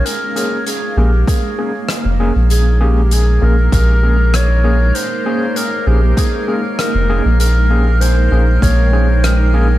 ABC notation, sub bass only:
X:1
M:4/4
L:1/16
Q:1/4=98
K:Bbdor
V:1 name="Sub bass" clef=bass
z6 B,,,2 z4 z F,,,2 B,,,- | B,,,6 B,,,2 B,,,8 | z6 B,,,2 z4 z F,,,2 B,,,- | B,,,6 B,,,2 B,,,8 |]